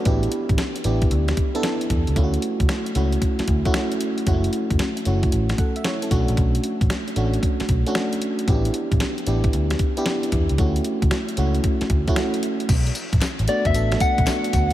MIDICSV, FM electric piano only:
0, 0, Header, 1, 2, 480
1, 0, Start_track
1, 0, Tempo, 526316
1, 53, Time_signature, 4, 2, 24, 8
1, 13436, End_track
2, 0, Start_track
2, 0, Title_t, "FM electric piano"
2, 0, Program_c, 0, 5
2, 0, Control_c, 0, 64, 127
2, 0, Note_on_c, 0, 57, 52
2, 0, Note_on_c, 0, 66, 66
2, 51, Note_on_c, 0, 59, 82
2, 54, Note_on_c, 0, 62, 74
2, 57, Note_on_c, 0, 64, 83
2, 61, Note_on_c, 0, 67, 96
2, 65, Control_c, 0, 64, 0
2, 203, Note_off_c, 0, 66, 0
2, 206, Note_off_c, 0, 57, 0
2, 239, Control_c, 0, 64, 127
2, 675, Note_off_c, 0, 59, 0
2, 677, Note_off_c, 0, 62, 0
2, 678, Note_off_c, 0, 64, 0
2, 680, Note_off_c, 0, 67, 0
2, 772, Note_on_c, 0, 59, 87
2, 776, Note_on_c, 0, 62, 78
2, 779, Note_on_c, 0, 64, 72
2, 783, Note_on_c, 0, 67, 87
2, 1265, Note_off_c, 0, 59, 0
2, 1267, Note_off_c, 0, 62, 0
2, 1269, Note_off_c, 0, 64, 0
2, 1271, Note_off_c, 0, 67, 0
2, 1410, Note_on_c, 0, 59, 94
2, 1414, Note_on_c, 0, 62, 82
2, 1417, Note_on_c, 0, 64, 83
2, 1420, Note_on_c, 0, 69, 103
2, 1898, Note_off_c, 0, 59, 0
2, 1900, Note_off_c, 0, 62, 0
2, 1901, Note_off_c, 0, 64, 0
2, 1903, Note_off_c, 0, 69, 0
2, 1971, Note_on_c, 0, 57, 86
2, 1975, Note_on_c, 0, 61, 80
2, 1978, Note_on_c, 0, 64, 78
2, 1983, Note_on_c, 0, 65, 73
2, 1986, Control_c, 0, 64, 0
2, 2039, Note_on_c, 0, 66, 88
2, 2055, Note_off_c, 0, 65, 0
2, 2130, Control_c, 0, 64, 127
2, 2595, Note_off_c, 0, 57, 0
2, 2597, Note_off_c, 0, 61, 0
2, 2599, Note_off_c, 0, 64, 0
2, 2629, Note_off_c, 0, 66, 0
2, 2695, Note_on_c, 0, 57, 85
2, 2699, Note_on_c, 0, 61, 73
2, 2702, Note_on_c, 0, 64, 74
2, 2705, Note_on_c, 0, 66, 89
2, 3187, Note_off_c, 0, 57, 0
2, 3189, Note_off_c, 0, 61, 0
2, 3190, Note_off_c, 0, 64, 0
2, 3192, Note_off_c, 0, 66, 0
2, 3331, Note_on_c, 0, 57, 95
2, 3335, Note_on_c, 0, 61, 91
2, 3339, Note_on_c, 0, 64, 90
2, 3342, Note_on_c, 0, 66, 105
2, 3818, Note_off_c, 0, 57, 0
2, 3820, Note_off_c, 0, 61, 0
2, 3822, Note_off_c, 0, 64, 0
2, 3824, Note_off_c, 0, 66, 0
2, 3893, Note_on_c, 0, 56, 66
2, 3896, Note_on_c, 0, 61, 77
2, 3900, Note_on_c, 0, 64, 79
2, 3902, Control_c, 0, 64, 0
2, 3904, Note_on_c, 0, 66, 93
2, 3950, Note_on_c, 0, 57, 85
2, 3970, Note_off_c, 0, 56, 0
2, 4075, Control_c, 0, 64, 127
2, 4518, Note_off_c, 0, 61, 0
2, 4520, Note_off_c, 0, 64, 0
2, 4522, Note_off_c, 0, 66, 0
2, 4545, Note_off_c, 0, 57, 0
2, 4615, Note_on_c, 0, 57, 76
2, 4618, Note_on_c, 0, 61, 74
2, 4622, Note_on_c, 0, 64, 74
2, 4625, Note_on_c, 0, 66, 83
2, 5095, Note_off_c, 0, 61, 0
2, 5097, Note_off_c, 0, 64, 0
2, 5098, Note_on_c, 0, 78, 59
2, 5099, Note_off_c, 0, 66, 0
2, 5103, Note_on_c, 0, 69, 52
2, 5107, Note_off_c, 0, 57, 0
2, 5247, Note_off_c, 0, 78, 0
2, 5250, Note_off_c, 0, 69, 0
2, 5257, Note_on_c, 0, 76, 71
2, 5331, Note_off_c, 0, 76, 0
2, 5335, Note_on_c, 0, 73, 74
2, 5341, Note_on_c, 0, 64, 61
2, 5485, Note_off_c, 0, 73, 0
2, 5489, Note_off_c, 0, 64, 0
2, 5497, Note_on_c, 0, 69, 60
2, 5501, Note_on_c, 0, 61, 51
2, 5560, Note_off_c, 0, 61, 0
2, 5569, Note_on_c, 0, 57, 91
2, 5571, Note_on_c, 0, 61, 80
2, 5575, Note_on_c, 0, 62, 80
2, 5578, Note_on_c, 0, 66, 101
2, 5583, Control_c, 0, 64, 0
2, 5723, Note_off_c, 0, 69, 0
2, 5729, Control_c, 0, 64, 127
2, 6376, Note_off_c, 0, 57, 0
2, 6377, Note_off_c, 0, 61, 0
2, 6378, Note_off_c, 0, 62, 0
2, 6380, Note_off_c, 0, 66, 0
2, 6532, Note_on_c, 0, 57, 84
2, 6535, Note_on_c, 0, 61, 74
2, 6539, Note_on_c, 0, 62, 72
2, 6542, Note_on_c, 0, 66, 85
2, 7025, Note_off_c, 0, 57, 0
2, 7027, Note_off_c, 0, 61, 0
2, 7029, Note_off_c, 0, 62, 0
2, 7030, Note_off_c, 0, 66, 0
2, 7173, Note_on_c, 0, 57, 94
2, 7175, Note_on_c, 0, 61, 87
2, 7179, Note_on_c, 0, 62, 89
2, 7184, Note_on_c, 0, 66, 103
2, 7659, Note_off_c, 0, 57, 0
2, 7660, Note_off_c, 0, 61, 0
2, 7662, Note_off_c, 0, 62, 0
2, 7664, Note_off_c, 0, 66, 0
2, 7733, Note_on_c, 0, 59, 83
2, 7737, Note_on_c, 0, 61, 64
2, 7740, Note_on_c, 0, 64, 77
2, 7743, Note_on_c, 0, 67, 89
2, 7744, Control_c, 0, 64, 0
2, 7793, Note_on_c, 0, 62, 80
2, 7812, Note_off_c, 0, 61, 0
2, 7915, Control_c, 0, 64, 127
2, 8356, Note_off_c, 0, 59, 0
2, 8360, Note_off_c, 0, 64, 0
2, 8361, Note_off_c, 0, 67, 0
2, 8386, Note_off_c, 0, 62, 0
2, 8454, Note_on_c, 0, 59, 78
2, 8456, Note_on_c, 0, 62, 74
2, 8460, Note_on_c, 0, 64, 73
2, 8464, Note_on_c, 0, 67, 91
2, 8946, Note_off_c, 0, 59, 0
2, 8948, Note_off_c, 0, 62, 0
2, 8949, Note_off_c, 0, 64, 0
2, 8951, Note_off_c, 0, 67, 0
2, 9093, Note_on_c, 0, 59, 93
2, 9096, Note_on_c, 0, 62, 88
2, 9098, Note_on_c, 0, 64, 90
2, 9103, Note_on_c, 0, 67, 107
2, 9579, Note_off_c, 0, 59, 0
2, 9581, Note_off_c, 0, 62, 0
2, 9582, Note_off_c, 0, 64, 0
2, 9584, Note_off_c, 0, 67, 0
2, 9656, Note_on_c, 0, 57, 84
2, 9658, Note_on_c, 0, 61, 76
2, 9661, Note_on_c, 0, 64, 78
2, 9666, Control_c, 0, 64, 0
2, 9666, Note_on_c, 0, 66, 90
2, 9840, Control_c, 0, 64, 127
2, 10278, Note_off_c, 0, 57, 0
2, 10279, Note_off_c, 0, 61, 0
2, 10280, Note_off_c, 0, 64, 0
2, 10283, Note_off_c, 0, 66, 0
2, 10373, Note_on_c, 0, 57, 82
2, 10377, Note_on_c, 0, 61, 70
2, 10380, Note_on_c, 0, 64, 70
2, 10385, Note_on_c, 0, 66, 96
2, 10866, Note_off_c, 0, 57, 0
2, 10868, Note_off_c, 0, 61, 0
2, 10870, Note_off_c, 0, 64, 0
2, 10872, Note_off_c, 0, 66, 0
2, 11014, Note_on_c, 0, 57, 94
2, 11018, Note_on_c, 0, 61, 88
2, 11022, Note_on_c, 0, 64, 90
2, 11024, Note_on_c, 0, 66, 105
2, 11500, Note_off_c, 0, 57, 0
2, 11502, Note_off_c, 0, 61, 0
2, 11503, Note_off_c, 0, 64, 0
2, 11505, Note_off_c, 0, 66, 0
2, 11584, Control_c, 0, 64, 0
2, 11732, Control_c, 0, 64, 127
2, 12294, Note_on_c, 0, 57, 80
2, 12297, Note_on_c, 0, 59, 75
2, 12302, Note_on_c, 0, 62, 71
2, 12306, Note_on_c, 0, 66, 83
2, 12504, Note_off_c, 0, 57, 0
2, 12505, Note_off_c, 0, 59, 0
2, 12508, Note_off_c, 0, 62, 0
2, 12510, Note_off_c, 0, 66, 0
2, 12536, Note_on_c, 0, 57, 69
2, 12539, Note_on_c, 0, 59, 67
2, 12544, Note_on_c, 0, 62, 66
2, 12547, Note_on_c, 0, 69, 84
2, 12955, Note_off_c, 0, 57, 0
2, 12957, Note_off_c, 0, 59, 0
2, 12959, Note_off_c, 0, 62, 0
2, 12961, Note_off_c, 0, 69, 0
2, 13015, Note_on_c, 0, 57, 78
2, 13018, Note_on_c, 0, 59, 75
2, 13022, Note_on_c, 0, 62, 72
2, 13026, Note_on_c, 0, 66, 89
2, 13435, Note_off_c, 0, 57, 0
2, 13436, Note_off_c, 0, 59, 0
2, 13436, Note_off_c, 0, 62, 0
2, 13436, Note_off_c, 0, 66, 0
2, 13436, End_track
0, 0, End_of_file